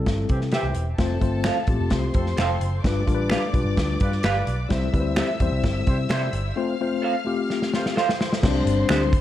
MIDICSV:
0, 0, Header, 1, 7, 480
1, 0, Start_track
1, 0, Key_signature, -1, "major"
1, 0, Tempo, 464037
1, 1026, Time_signature, 4, 2, 24, 8
1, 9526, End_track
2, 0, Start_track
2, 0, Title_t, "String section"
2, 0, Program_c, 0, 48
2, 1006, Note_on_c, 0, 81, 74
2, 1009, Note_on_c, 0, 69, 69
2, 1957, Note_off_c, 0, 81, 0
2, 1958, Note_off_c, 0, 69, 0
2, 1983, Note_on_c, 0, 84, 81
2, 1986, Note_on_c, 0, 72, 75
2, 2925, Note_off_c, 0, 84, 0
2, 2925, Note_on_c, 0, 86, 74
2, 2926, Note_on_c, 0, 74, 77
2, 2927, Note_off_c, 0, 72, 0
2, 4818, Note_off_c, 0, 74, 0
2, 4818, Note_off_c, 0, 86, 0
2, 4870, Note_on_c, 0, 76, 76
2, 4872, Note_on_c, 0, 88, 80
2, 6752, Note_off_c, 0, 76, 0
2, 6753, Note_off_c, 0, 88, 0
2, 6787, Note_on_c, 0, 89, 81
2, 6796, Note_on_c, 0, 77, 74
2, 8200, Note_off_c, 0, 89, 0
2, 8204, Note_off_c, 0, 77, 0
2, 8225, Note_on_c, 0, 84, 83
2, 8227, Note_on_c, 0, 72, 70
2, 8698, Note_off_c, 0, 84, 0
2, 8699, Note_off_c, 0, 72, 0
2, 8715, Note_on_c, 0, 72, 74
2, 8717, Note_on_c, 0, 84, 83
2, 9526, Note_off_c, 0, 72, 0
2, 9526, Note_off_c, 0, 84, 0
2, 9526, End_track
3, 0, Start_track
3, 0, Title_t, "Clean electric guitar"
3, 0, Program_c, 1, 27
3, 541, Note_on_c, 1, 67, 67
3, 553, Note_on_c, 1, 72, 70
3, 560, Note_on_c, 1, 76, 77
3, 651, Note_off_c, 1, 67, 0
3, 657, Note_off_c, 1, 72, 0
3, 661, Note_off_c, 1, 76, 0
3, 1492, Note_on_c, 1, 69, 69
3, 1508, Note_on_c, 1, 72, 75
3, 1514, Note_on_c, 1, 77, 70
3, 1607, Note_off_c, 1, 69, 0
3, 1614, Note_off_c, 1, 72, 0
3, 1618, Note_off_c, 1, 77, 0
3, 2449, Note_on_c, 1, 69, 68
3, 2459, Note_on_c, 1, 72, 77
3, 2470, Note_on_c, 1, 77, 90
3, 2565, Note_off_c, 1, 69, 0
3, 2570, Note_off_c, 1, 72, 0
3, 2576, Note_off_c, 1, 77, 0
3, 3411, Note_on_c, 1, 67, 71
3, 3422, Note_on_c, 1, 71, 71
3, 3430, Note_on_c, 1, 77, 79
3, 3526, Note_off_c, 1, 67, 0
3, 3532, Note_off_c, 1, 71, 0
3, 3536, Note_off_c, 1, 77, 0
3, 4381, Note_on_c, 1, 67, 68
3, 4389, Note_on_c, 1, 71, 80
3, 4399, Note_on_c, 1, 77, 77
3, 4492, Note_off_c, 1, 67, 0
3, 4496, Note_off_c, 1, 71, 0
3, 4500, Note_off_c, 1, 77, 0
3, 5341, Note_on_c, 1, 67, 76
3, 5356, Note_on_c, 1, 72, 72
3, 5361, Note_on_c, 1, 76, 83
3, 5452, Note_off_c, 1, 67, 0
3, 5459, Note_off_c, 1, 72, 0
3, 5462, Note_off_c, 1, 76, 0
3, 6305, Note_on_c, 1, 67, 79
3, 6311, Note_on_c, 1, 72, 77
3, 6320, Note_on_c, 1, 76, 80
3, 6414, Note_off_c, 1, 67, 0
3, 6417, Note_off_c, 1, 72, 0
3, 6422, Note_off_c, 1, 76, 0
3, 7262, Note_on_c, 1, 69, 85
3, 7273, Note_on_c, 1, 72, 73
3, 7285, Note_on_c, 1, 77, 84
3, 7373, Note_off_c, 1, 69, 0
3, 7378, Note_off_c, 1, 72, 0
3, 7384, Note_off_c, 1, 77, 0
3, 8233, Note_on_c, 1, 69, 69
3, 8244, Note_on_c, 1, 72, 76
3, 8254, Note_on_c, 1, 77, 82
3, 8339, Note_off_c, 1, 69, 0
3, 8344, Note_off_c, 1, 72, 0
3, 8349, Note_off_c, 1, 77, 0
3, 9195, Note_on_c, 1, 62, 82
3, 9208, Note_on_c, 1, 67, 94
3, 9217, Note_on_c, 1, 72, 100
3, 9300, Note_off_c, 1, 62, 0
3, 9306, Note_off_c, 1, 67, 0
3, 9310, Note_off_c, 1, 72, 0
3, 9526, End_track
4, 0, Start_track
4, 0, Title_t, "Horn section"
4, 0, Program_c, 2, 61
4, 312, Note_on_c, 2, 67, 78
4, 315, Note_on_c, 2, 60, 72
4, 317, Note_on_c, 2, 52, 70
4, 412, Note_off_c, 2, 67, 0
4, 413, Note_off_c, 2, 60, 0
4, 415, Note_off_c, 2, 52, 0
4, 547, Note_on_c, 2, 67, 89
4, 550, Note_on_c, 2, 60, 80
4, 552, Note_on_c, 2, 52, 85
4, 889, Note_off_c, 2, 67, 0
4, 891, Note_off_c, 2, 52, 0
4, 891, Note_off_c, 2, 60, 0
4, 2216, Note_on_c, 2, 60, 73
4, 2221, Note_on_c, 2, 69, 81
4, 2224, Note_on_c, 2, 53, 69
4, 2322, Note_off_c, 2, 60, 0
4, 2325, Note_off_c, 2, 69, 0
4, 2327, Note_off_c, 2, 53, 0
4, 2467, Note_on_c, 2, 60, 85
4, 2468, Note_on_c, 2, 53, 85
4, 2468, Note_on_c, 2, 69, 87
4, 2809, Note_off_c, 2, 60, 0
4, 2809, Note_off_c, 2, 69, 0
4, 2810, Note_off_c, 2, 53, 0
4, 4151, Note_on_c, 2, 71, 81
4, 4156, Note_on_c, 2, 55, 78
4, 4157, Note_on_c, 2, 65, 74
4, 4252, Note_off_c, 2, 71, 0
4, 4254, Note_off_c, 2, 55, 0
4, 4255, Note_off_c, 2, 65, 0
4, 4388, Note_on_c, 2, 71, 96
4, 4389, Note_on_c, 2, 55, 77
4, 4393, Note_on_c, 2, 65, 85
4, 4730, Note_off_c, 2, 71, 0
4, 4731, Note_off_c, 2, 55, 0
4, 4733, Note_off_c, 2, 65, 0
4, 6071, Note_on_c, 2, 55, 80
4, 6076, Note_on_c, 2, 64, 68
4, 6076, Note_on_c, 2, 72, 80
4, 6172, Note_off_c, 2, 55, 0
4, 6175, Note_off_c, 2, 64, 0
4, 6175, Note_off_c, 2, 72, 0
4, 6304, Note_on_c, 2, 55, 80
4, 6304, Note_on_c, 2, 64, 80
4, 6306, Note_on_c, 2, 72, 95
4, 6648, Note_off_c, 2, 55, 0
4, 6649, Note_off_c, 2, 64, 0
4, 6649, Note_off_c, 2, 72, 0
4, 8005, Note_on_c, 2, 65, 73
4, 8007, Note_on_c, 2, 72, 83
4, 8010, Note_on_c, 2, 57, 77
4, 8100, Note_off_c, 2, 65, 0
4, 8102, Note_off_c, 2, 72, 0
4, 8103, Note_off_c, 2, 57, 0
4, 8248, Note_on_c, 2, 72, 94
4, 8250, Note_on_c, 2, 65, 85
4, 8253, Note_on_c, 2, 57, 84
4, 8581, Note_off_c, 2, 72, 0
4, 8582, Note_off_c, 2, 65, 0
4, 8584, Note_off_c, 2, 57, 0
4, 9526, End_track
5, 0, Start_track
5, 0, Title_t, "Tine electric piano"
5, 0, Program_c, 3, 4
5, 0, Note_on_c, 3, 55, 74
5, 0, Note_on_c, 3, 60, 64
5, 0, Note_on_c, 3, 64, 62
5, 0, Note_on_c, 3, 69, 83
5, 539, Note_off_c, 3, 55, 0
5, 540, Note_off_c, 3, 60, 0
5, 543, Note_off_c, 3, 64, 0
5, 575, Note_off_c, 3, 69, 0
5, 1020, Note_on_c, 3, 57, 77
5, 1026, Note_on_c, 3, 60, 77
5, 1028, Note_on_c, 3, 65, 75
5, 1036, Note_on_c, 3, 72, 93
5, 1201, Note_off_c, 3, 57, 0
5, 1204, Note_off_c, 3, 60, 0
5, 1205, Note_off_c, 3, 65, 0
5, 1209, Note_off_c, 3, 72, 0
5, 1249, Note_on_c, 3, 57, 80
5, 1255, Note_on_c, 3, 60, 75
5, 1265, Note_on_c, 3, 65, 75
5, 1266, Note_on_c, 3, 72, 81
5, 1613, Note_off_c, 3, 57, 0
5, 1616, Note_off_c, 3, 60, 0
5, 1621, Note_off_c, 3, 65, 0
5, 1622, Note_off_c, 3, 72, 0
5, 1740, Note_on_c, 3, 56, 55
5, 1744, Note_on_c, 3, 60, 74
5, 1751, Note_on_c, 3, 65, 70
5, 1753, Note_on_c, 3, 67, 81
5, 1798, Note_on_c, 3, 57, 72
5, 1801, Note_off_c, 3, 56, 0
5, 2456, Note_off_c, 3, 60, 0
5, 2460, Note_off_c, 3, 65, 0
5, 2460, Note_off_c, 3, 67, 0
5, 2483, Note_off_c, 3, 57, 0
5, 2937, Note_on_c, 3, 55, 75
5, 2946, Note_on_c, 3, 62, 70
5, 2948, Note_on_c, 3, 65, 71
5, 2958, Note_on_c, 3, 71, 88
5, 3119, Note_off_c, 3, 55, 0
5, 3124, Note_off_c, 3, 62, 0
5, 3125, Note_off_c, 3, 65, 0
5, 3130, Note_off_c, 3, 71, 0
5, 3171, Note_on_c, 3, 55, 78
5, 3177, Note_on_c, 3, 62, 69
5, 3181, Note_on_c, 3, 65, 77
5, 3192, Note_on_c, 3, 70, 68
5, 3247, Note_off_c, 3, 70, 0
5, 3253, Note_on_c, 3, 71, 94
5, 3535, Note_off_c, 3, 55, 0
5, 3537, Note_off_c, 3, 62, 0
5, 3539, Note_off_c, 3, 65, 0
5, 3575, Note_off_c, 3, 71, 0
5, 3653, Note_on_c, 3, 55, 80
5, 3653, Note_on_c, 3, 62, 66
5, 3664, Note_on_c, 3, 65, 71
5, 3669, Note_on_c, 3, 71, 79
5, 4371, Note_off_c, 3, 55, 0
5, 4371, Note_off_c, 3, 62, 0
5, 4376, Note_off_c, 3, 65, 0
5, 4379, Note_off_c, 3, 71, 0
5, 4851, Note_on_c, 3, 55, 85
5, 4858, Note_on_c, 3, 60, 71
5, 4862, Note_on_c, 3, 64, 79
5, 4870, Note_on_c, 3, 72, 88
5, 5037, Note_off_c, 3, 55, 0
5, 5041, Note_off_c, 3, 60, 0
5, 5042, Note_off_c, 3, 64, 0
5, 5047, Note_off_c, 3, 72, 0
5, 5096, Note_on_c, 3, 55, 82
5, 5100, Note_on_c, 3, 60, 75
5, 5110, Note_on_c, 3, 64, 78
5, 5121, Note_on_c, 3, 71, 70
5, 5172, Note_off_c, 3, 71, 0
5, 5175, Note_on_c, 3, 72, 84
5, 5458, Note_off_c, 3, 55, 0
5, 5460, Note_off_c, 3, 60, 0
5, 5464, Note_off_c, 3, 64, 0
5, 5497, Note_off_c, 3, 72, 0
5, 5591, Note_on_c, 3, 55, 83
5, 5595, Note_on_c, 3, 60, 70
5, 5601, Note_on_c, 3, 64, 69
5, 5607, Note_on_c, 3, 72, 90
5, 6301, Note_off_c, 3, 55, 0
5, 6303, Note_off_c, 3, 60, 0
5, 6306, Note_off_c, 3, 64, 0
5, 6309, Note_off_c, 3, 72, 0
5, 6786, Note_on_c, 3, 57, 87
5, 6788, Note_on_c, 3, 60, 78
5, 6798, Note_on_c, 3, 65, 84
5, 6802, Note_on_c, 3, 72, 94
5, 6965, Note_off_c, 3, 57, 0
5, 6966, Note_off_c, 3, 60, 0
5, 6971, Note_off_c, 3, 65, 0
5, 6973, Note_off_c, 3, 72, 0
5, 7038, Note_on_c, 3, 57, 75
5, 7042, Note_on_c, 3, 60, 76
5, 7045, Note_on_c, 3, 65, 81
5, 7051, Note_on_c, 3, 72, 88
5, 7389, Note_off_c, 3, 57, 0
5, 7391, Note_off_c, 3, 60, 0
5, 7393, Note_off_c, 3, 65, 0
5, 7396, Note_off_c, 3, 72, 0
5, 7497, Note_on_c, 3, 57, 77
5, 7508, Note_on_c, 3, 60, 69
5, 7512, Note_on_c, 3, 65, 69
5, 7518, Note_on_c, 3, 67, 88
5, 8214, Note_off_c, 3, 57, 0
5, 8220, Note_off_c, 3, 60, 0
5, 8222, Note_off_c, 3, 65, 0
5, 8225, Note_off_c, 3, 67, 0
5, 8719, Note_on_c, 3, 55, 86
5, 8721, Note_on_c, 3, 60, 76
5, 8734, Note_on_c, 3, 62, 82
5, 8740, Note_on_c, 3, 72, 92
5, 9425, Note_off_c, 3, 55, 0
5, 9426, Note_off_c, 3, 60, 0
5, 9432, Note_off_c, 3, 62, 0
5, 9435, Note_off_c, 3, 72, 0
5, 9526, End_track
6, 0, Start_track
6, 0, Title_t, "Picked electric bass"
6, 0, Program_c, 4, 34
6, 66, Note_on_c, 4, 31, 82
6, 252, Note_off_c, 4, 31, 0
6, 305, Note_on_c, 4, 48, 86
6, 584, Note_off_c, 4, 48, 0
6, 653, Note_on_c, 4, 36, 68
6, 751, Note_off_c, 4, 36, 0
6, 773, Note_on_c, 4, 28, 68
6, 964, Note_off_c, 4, 28, 0
6, 1017, Note_on_c, 4, 29, 87
6, 1206, Note_off_c, 4, 29, 0
6, 1257, Note_on_c, 4, 31, 71
6, 1539, Note_off_c, 4, 31, 0
6, 1735, Note_on_c, 4, 33, 85
6, 1832, Note_off_c, 4, 33, 0
6, 1855, Note_on_c, 4, 29, 84
6, 1952, Note_off_c, 4, 29, 0
6, 1976, Note_on_c, 4, 36, 77
6, 2165, Note_off_c, 4, 36, 0
6, 2217, Note_on_c, 4, 41, 91
6, 2406, Note_off_c, 4, 41, 0
6, 2459, Note_on_c, 4, 29, 79
6, 2647, Note_off_c, 4, 29, 0
6, 2695, Note_on_c, 4, 30, 73
6, 2885, Note_off_c, 4, 30, 0
6, 2938, Note_on_c, 4, 31, 88
6, 3127, Note_off_c, 4, 31, 0
6, 3179, Note_on_c, 4, 33, 68
6, 3460, Note_off_c, 4, 33, 0
6, 3661, Note_on_c, 4, 35, 87
6, 3756, Note_off_c, 4, 35, 0
6, 3767, Note_on_c, 4, 31, 79
6, 3867, Note_off_c, 4, 31, 0
6, 3904, Note_on_c, 4, 38, 83
6, 4090, Note_off_c, 4, 38, 0
6, 4148, Note_on_c, 4, 43, 91
6, 4333, Note_off_c, 4, 43, 0
6, 4385, Note_on_c, 4, 31, 75
6, 4571, Note_off_c, 4, 31, 0
6, 4624, Note_on_c, 4, 35, 77
6, 4811, Note_off_c, 4, 35, 0
6, 4865, Note_on_c, 4, 36, 97
6, 5051, Note_off_c, 4, 36, 0
6, 5108, Note_on_c, 4, 38, 76
6, 5386, Note_off_c, 4, 38, 0
6, 5587, Note_on_c, 4, 40, 84
6, 5680, Note_off_c, 4, 40, 0
6, 5704, Note_on_c, 4, 36, 80
6, 5798, Note_off_c, 4, 36, 0
6, 5833, Note_on_c, 4, 31, 93
6, 6017, Note_off_c, 4, 31, 0
6, 6075, Note_on_c, 4, 48, 77
6, 6258, Note_off_c, 4, 48, 0
6, 6308, Note_on_c, 4, 48, 91
6, 6494, Note_off_c, 4, 48, 0
6, 6548, Note_on_c, 4, 31, 87
6, 6734, Note_off_c, 4, 31, 0
6, 8720, Note_on_c, 4, 36, 98
6, 8902, Note_off_c, 4, 36, 0
6, 8951, Note_on_c, 4, 31, 87
6, 9136, Note_off_c, 4, 31, 0
6, 9204, Note_on_c, 4, 38, 87
6, 9476, Note_off_c, 4, 38, 0
6, 9526, End_track
7, 0, Start_track
7, 0, Title_t, "Drums"
7, 65, Note_on_c, 9, 42, 62
7, 67, Note_on_c, 9, 36, 70
7, 71, Note_on_c, 9, 38, 81
7, 169, Note_off_c, 9, 42, 0
7, 170, Note_off_c, 9, 36, 0
7, 175, Note_off_c, 9, 38, 0
7, 300, Note_on_c, 9, 42, 62
7, 307, Note_on_c, 9, 36, 87
7, 404, Note_off_c, 9, 42, 0
7, 410, Note_off_c, 9, 36, 0
7, 423, Note_on_c, 9, 38, 30
7, 526, Note_off_c, 9, 38, 0
7, 534, Note_on_c, 9, 42, 73
7, 545, Note_on_c, 9, 38, 84
7, 638, Note_off_c, 9, 42, 0
7, 648, Note_off_c, 9, 38, 0
7, 772, Note_on_c, 9, 42, 72
7, 875, Note_off_c, 9, 42, 0
7, 1018, Note_on_c, 9, 42, 71
7, 1020, Note_on_c, 9, 36, 86
7, 1022, Note_on_c, 9, 38, 93
7, 1122, Note_off_c, 9, 42, 0
7, 1123, Note_off_c, 9, 36, 0
7, 1126, Note_off_c, 9, 38, 0
7, 1257, Note_on_c, 9, 36, 72
7, 1258, Note_on_c, 9, 42, 62
7, 1360, Note_off_c, 9, 36, 0
7, 1362, Note_off_c, 9, 42, 0
7, 1489, Note_on_c, 9, 26, 87
7, 1495, Note_on_c, 9, 38, 95
7, 1496, Note_on_c, 9, 42, 84
7, 1592, Note_off_c, 9, 26, 0
7, 1599, Note_off_c, 9, 38, 0
7, 1600, Note_off_c, 9, 42, 0
7, 1726, Note_on_c, 9, 42, 62
7, 1734, Note_on_c, 9, 36, 79
7, 1830, Note_off_c, 9, 42, 0
7, 1838, Note_off_c, 9, 36, 0
7, 1969, Note_on_c, 9, 42, 73
7, 1975, Note_on_c, 9, 38, 89
7, 1977, Note_on_c, 9, 36, 78
7, 2073, Note_off_c, 9, 42, 0
7, 2079, Note_off_c, 9, 38, 0
7, 2081, Note_off_c, 9, 36, 0
7, 2212, Note_on_c, 9, 42, 59
7, 2220, Note_on_c, 9, 36, 94
7, 2315, Note_off_c, 9, 42, 0
7, 2323, Note_off_c, 9, 36, 0
7, 2338, Note_on_c, 9, 38, 30
7, 2442, Note_off_c, 9, 38, 0
7, 2456, Note_on_c, 9, 42, 77
7, 2465, Note_on_c, 9, 26, 77
7, 2467, Note_on_c, 9, 38, 89
7, 2560, Note_off_c, 9, 42, 0
7, 2568, Note_off_c, 9, 26, 0
7, 2570, Note_off_c, 9, 38, 0
7, 2701, Note_on_c, 9, 42, 75
7, 2805, Note_off_c, 9, 42, 0
7, 2941, Note_on_c, 9, 36, 78
7, 2943, Note_on_c, 9, 42, 76
7, 2947, Note_on_c, 9, 38, 94
7, 3044, Note_off_c, 9, 36, 0
7, 3047, Note_off_c, 9, 42, 0
7, 3051, Note_off_c, 9, 38, 0
7, 3181, Note_on_c, 9, 36, 76
7, 3189, Note_on_c, 9, 42, 64
7, 3284, Note_off_c, 9, 36, 0
7, 3293, Note_off_c, 9, 42, 0
7, 3409, Note_on_c, 9, 26, 95
7, 3428, Note_on_c, 9, 38, 104
7, 3429, Note_on_c, 9, 42, 82
7, 3512, Note_off_c, 9, 26, 0
7, 3531, Note_off_c, 9, 38, 0
7, 3532, Note_off_c, 9, 42, 0
7, 3660, Note_on_c, 9, 36, 85
7, 3660, Note_on_c, 9, 42, 64
7, 3763, Note_off_c, 9, 36, 0
7, 3764, Note_off_c, 9, 42, 0
7, 3903, Note_on_c, 9, 36, 78
7, 3903, Note_on_c, 9, 42, 73
7, 3909, Note_on_c, 9, 38, 93
7, 4006, Note_off_c, 9, 42, 0
7, 4007, Note_off_c, 9, 36, 0
7, 4012, Note_off_c, 9, 38, 0
7, 4138, Note_on_c, 9, 42, 64
7, 4146, Note_on_c, 9, 36, 97
7, 4241, Note_off_c, 9, 42, 0
7, 4250, Note_off_c, 9, 36, 0
7, 4262, Note_on_c, 9, 38, 31
7, 4365, Note_off_c, 9, 38, 0
7, 4376, Note_on_c, 9, 42, 87
7, 4385, Note_on_c, 9, 26, 81
7, 4386, Note_on_c, 9, 38, 93
7, 4479, Note_off_c, 9, 42, 0
7, 4489, Note_off_c, 9, 26, 0
7, 4490, Note_off_c, 9, 38, 0
7, 4624, Note_on_c, 9, 42, 71
7, 4727, Note_off_c, 9, 42, 0
7, 4865, Note_on_c, 9, 42, 72
7, 4868, Note_on_c, 9, 36, 92
7, 4869, Note_on_c, 9, 38, 95
7, 4969, Note_off_c, 9, 42, 0
7, 4971, Note_off_c, 9, 36, 0
7, 4973, Note_off_c, 9, 38, 0
7, 5106, Note_on_c, 9, 36, 80
7, 5110, Note_on_c, 9, 42, 59
7, 5210, Note_off_c, 9, 36, 0
7, 5214, Note_off_c, 9, 42, 0
7, 5341, Note_on_c, 9, 26, 98
7, 5346, Note_on_c, 9, 38, 98
7, 5347, Note_on_c, 9, 42, 74
7, 5445, Note_off_c, 9, 26, 0
7, 5449, Note_off_c, 9, 38, 0
7, 5450, Note_off_c, 9, 42, 0
7, 5586, Note_on_c, 9, 42, 60
7, 5588, Note_on_c, 9, 36, 79
7, 5689, Note_off_c, 9, 42, 0
7, 5692, Note_off_c, 9, 36, 0
7, 5829, Note_on_c, 9, 42, 75
7, 5832, Note_on_c, 9, 36, 84
7, 5835, Note_on_c, 9, 38, 95
7, 5932, Note_off_c, 9, 42, 0
7, 5935, Note_off_c, 9, 36, 0
7, 5939, Note_off_c, 9, 38, 0
7, 6070, Note_on_c, 9, 42, 61
7, 6075, Note_on_c, 9, 36, 99
7, 6173, Note_off_c, 9, 42, 0
7, 6179, Note_off_c, 9, 36, 0
7, 6301, Note_on_c, 9, 42, 75
7, 6312, Note_on_c, 9, 38, 97
7, 6317, Note_on_c, 9, 26, 84
7, 6405, Note_off_c, 9, 42, 0
7, 6415, Note_off_c, 9, 38, 0
7, 6420, Note_off_c, 9, 26, 0
7, 6548, Note_on_c, 9, 42, 80
7, 6651, Note_off_c, 9, 42, 0
7, 7760, Note_on_c, 9, 38, 46
7, 7863, Note_off_c, 9, 38, 0
7, 7883, Note_on_c, 9, 38, 44
7, 7987, Note_off_c, 9, 38, 0
7, 8001, Note_on_c, 9, 38, 71
7, 8105, Note_off_c, 9, 38, 0
7, 8130, Note_on_c, 9, 38, 64
7, 8233, Note_off_c, 9, 38, 0
7, 8247, Note_on_c, 9, 38, 74
7, 8351, Note_off_c, 9, 38, 0
7, 8370, Note_on_c, 9, 38, 77
7, 8474, Note_off_c, 9, 38, 0
7, 8489, Note_on_c, 9, 38, 94
7, 8593, Note_off_c, 9, 38, 0
7, 8612, Note_on_c, 9, 38, 83
7, 8715, Note_off_c, 9, 38, 0
7, 8724, Note_on_c, 9, 36, 101
7, 8726, Note_on_c, 9, 49, 84
7, 8731, Note_on_c, 9, 38, 107
7, 8827, Note_off_c, 9, 36, 0
7, 8829, Note_off_c, 9, 49, 0
7, 8835, Note_off_c, 9, 38, 0
7, 8968, Note_on_c, 9, 42, 69
7, 9071, Note_off_c, 9, 42, 0
7, 9194, Note_on_c, 9, 26, 109
7, 9210, Note_on_c, 9, 38, 107
7, 9211, Note_on_c, 9, 42, 88
7, 9298, Note_off_c, 9, 26, 0
7, 9314, Note_off_c, 9, 38, 0
7, 9315, Note_off_c, 9, 42, 0
7, 9442, Note_on_c, 9, 36, 85
7, 9443, Note_on_c, 9, 42, 69
7, 9526, Note_off_c, 9, 36, 0
7, 9526, Note_off_c, 9, 42, 0
7, 9526, End_track
0, 0, End_of_file